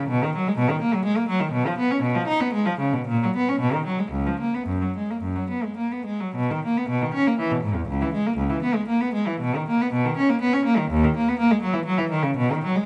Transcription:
0.09 0.21 B2 medium
0.23 0.35 D#3 medium
0.36 0.47 F#3 medium
0.48 0.59 G#3 medium
0.58 0.70 B2 medium
0.70 0.82 D#3 medium
0.82 0.93 A#3 medium
0.94 1.06 F#3 medium
1.05 1.17 G#3 medium
1.17 1.29 A#3 medium
1.29 1.41 F#3 medium
1.40 1.53 D#3 medium
1.52 1.65 B2 medium
1.67 1.79 F3 medium
1.78 1.90 B3 medium
1.91 2.03 C#4 medium
2.02 2.15 B2 medium
2.15 2.28 F3 medium
2.27 2.40 D#4 medium
2.41 2.53 B3 medium
2.54 2.66 G#3 medium
2.66 2.79 F3 medium
2.79 2.93 C#3 medium
2.93 3.07 B2 medium
3.07 3.21 A#2 medium
3.23 3.36 F#3 medium
3.36 3.48 B3 medium
3.49 3.61 C#4 medium
3.60 3.73 B2 medium
3.74 3.86 D#3 medium
3.86 3.99 F#3 soft
3.99 4.12 G#3 soft
4.12 4.25 C#2 medium
4.26 4.40 F3 soft
4.40 4.53 A#3 soft
4.54 4.68 B3 soft
4.67 4.81 F#2 medium
4.82 4.95 F#3 soft
4.97 5.09 G#3 soft
5.11 5.24 A#3 soft
5.22 5.36 F#2 soft
5.36 5.50 F#3 soft
5.50 5.63 B3 soft
5.64 5.78 G#3 soft
5.77 5.91 A#3 soft
5.92 6.06 B3 soft
6.06 6.21 G#3 soft
6.21 6.36 F#3 soft
6.35 6.50 B2 medium
6.50 6.64 D#3 medium
6.65 6.77 A#3 soft
6.77 6.90 B3 medium
6.89 7.02 B2 medium
7.02 7.14 D#3 medium
7.14 7.26 C#4 medium
7.27 7.39 A#3 medium
7.39 7.51 E3 medium
7.52 7.64 B2 medium
7.63 7.76 G#2 medium
7.75 7.88 E2 soft
7.89 8.00 C#2 medium
8.02 8.13 E3 medium
8.14 8.26 G#3 medium
8.27 8.38 A#3 medium
8.37 8.49 C#2 medium
8.50 8.62 E3 medium
8.63 8.75 B3 medium
8.75 8.87 G#3 medium
8.88 9.00 A#3 medium
9.00 9.13 B3 medium
9.14 9.27 G#3 medium
9.27 9.41 E3 medium
9.41 9.54 B2 medium
9.56 9.68 D#3 medium
9.69 9.81 A#3 medium
9.82 9.93 B3 medium
9.93 10.05 B2 medium
10.05 10.17 D#3 medium
10.17 10.29 C#4 medium
10.30 10.42 A#3 medium
10.41 10.53 B3 medium
10.53 10.66 C#4 medium
10.66 10.78 A#3 medium
10.78 10.90 D#3 medium
10.91 11.03 D#2 medium
11.05 11.16 D#3 medium
11.16 11.27 A#3 medium
11.28 11.39 B3 medium
11.39 11.50 A#3 medium
11.51 11.62 G#3 medium
11.62 11.74 F#3 medium
11.74 11.86 E3 medium
11.85 11.98 F#3 medium
11.98 12.11 E3 medium
12.11 12.23 D#3 medium
12.23 12.37 C#3 medium
12.37 12.50 B2 medium
12.52 12.63 D#3 medium
12.65 12.76 F#3 medium
12.76 12.86 G#3 medium

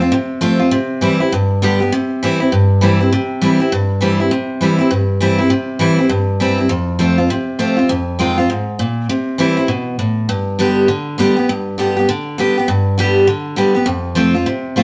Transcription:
0.01 0.12 C4 medium
0.01 0.12 F4 medium
0.12 0.69 C3 loud
0.41 0.59 F3 medium
0.41 0.59 A3 loud
0.41 0.60 C4 loud
0.41 0.58 F4 loud
0.59 0.72 C4 soft
0.59 0.71 F4 medium
0.71 1.29 C3 loud
1.01 1.19 E3 medium
1.01 1.20 G3 medium
1.01 1.20 C4 loud
1.01 1.19 E4 loud
1.20 1.32 C4 soft
1.20 1.31 E4 medium
1.32 1.89 G2 loud
1.62 1.79 D3 medium
1.62 1.80 G3 medium
1.62 1.80 B3 loud
1.62 1.79 G4 loud
1.80 1.92 B3 medium
1.80 1.91 G4 medium
1.92 2.49 C3 loud
2.23 2.40 E3 medium
2.23 2.40 G3 medium
2.23 2.40 C4 medium
2.23 2.39 E4 loud
2.40 2.52 C4 soft
2.40 2.51 E4 medium
2.52 3.09 G2 medium
2.81 2.99 E3 medium
2.81 2.99 G3 loud
2.81 3.00 C4 loud
2.81 2.99 E4 medium
3.00 3.12 C4 medium
3.00 3.11 E4 medium
3.12 3.69 C3 loud
3.41 3.59 E3 medium
3.41 3.59 G3 medium
3.41 3.59 C4 medium
3.41 3.59 E4 loud
3.60 3.71 C4 soft
3.60 3.71 E4 medium
3.72 4.29 G2 medium
4.01 4.18 E3 medium
4.01 4.19 G3 medium
4.01 4.19 C4 loud
4.01 4.19 E4 loud
4.20 4.31 C4 soft
4.20 4.31 E4 medium
4.31 4.88 C3 loud
4.61 4.78 E3 medium
4.61 4.79 G3 medium
4.61 4.79 C4 medium
4.61 4.77 E4 medium
4.79 4.91 C4 medium
4.79 4.90 E4 medium
4.91 5.48 G2 loud
5.21 5.38 E3 medium
5.21 5.39 G3 medium
5.21 5.39 C4 medium
5.21 5.37 E4 medium
5.38 5.51 C4 soft
5.38 5.50 E4 medium
5.50 6.08 C3 medium
5.79 5.97 E3 medium
5.79 5.98 G3 loud
5.79 5.98 C4 medium
5.79 5.97 E4 loud
5.99 6.10 C4 soft
5.99 6.10 E4 medium
6.09 6.67 G2 medium
6.40 6.58 E3 medium
6.40 6.58 G3 medium
6.40 6.58 C4 medium
6.40 6.57 E4 loud
6.58 6.70 C4 soft
6.58 6.69 E4 medium
6.69 7.27 F2 loud
6.99 7.17 F3 medium
6.99 7.17 A3 medium
6.99 7.18 C4 medium
6.99 7.17 F4 loud
7.18 7.30 C4 medium
7.18 7.29 F4 medium
7.30 7.87 C3 medium
7.59 7.77 F3 medium
7.59 7.77 A3 medium
7.59 7.77 C4 medium
7.59 7.75 F4 loud
7.77 7.90 C4 medium
7.77 7.88 F4 medium
7.89 8.47 F2 loud
8.19 8.37 D#3 medium
8.19 8.37 G#3 medium
8.19 8.37 C4 loud
8.19 8.36 F4 loud
8.38 8.50 C4 soft
8.38 8.49 F4 medium
8.50 8.78 G#2 medium
8.79 9.08 A#2 medium
9.09 9.67 C3 loud
9.38 9.56 E3 medium
9.38 9.57 G3 medium
9.38 9.57 C4 loud
9.38 9.56 E4 medium
9.57 9.69 C4 medium
9.57 9.68 E4 medium
9.68 9.97 B2 medium
9.99 10.28 A2 medium
10.29 10.86 G2 loud
10.59 10.87 D3 medium
10.59 10.88 G3 medium
10.59 10.88 B3 loud
10.59 10.88 G4 loud
10.88 11.17 D3 medium
11.18 11.36 D3 medium
11.18 11.36 G3 medium
11.18 11.36 B3 loud
11.18 11.35 G4 loud
11.36 11.49 B3 soft
11.36 11.48 G4 medium
11.49 12.06 G2 medium
11.78 11.96 D3 medium
11.78 11.96 G3 medium
11.78 11.96 B3 medium
11.78 11.95 G4 loud
11.97 12.09 B3 medium
11.97 12.08 G4 medium
12.09 12.37 D3 loud
12.38 12.56 D3 medium
12.38 12.56 G3 medium
12.38 12.56 B3 medium
12.38 12.57 G4 medium
12.58 12.69 B3 medium
12.58 12.68 G4 medium
12.68 13.25 G2 medium
12.98 13.26 D3 medium
12.98 13.27 G3 medium
12.98 13.27 B3 medium
12.98 13.27 G4 loud
13.27 13.55 D3 medium
13.56 13.74 D3 loud
13.56 13.75 G3 medium
13.56 13.75 B3 medium
13.56 13.73 G4 loud
13.75 13.87 B3 medium
13.75 13.86 G4 medium
13.86 14.44 F2 loud
14.15 14.33 F3 medium
14.15 14.34 A3 medium
14.15 14.34 C4 loud
14.15 14.33 F4 medium
14.35 14.47 C4 medium
14.35 14.46 F4 medium
14.46 14.83 C3 medium
14.76 14.83 F3 medium
14.76 14.83 A3 medium
14.76 14.83 C4 medium
14.76 14.83 F4 loud

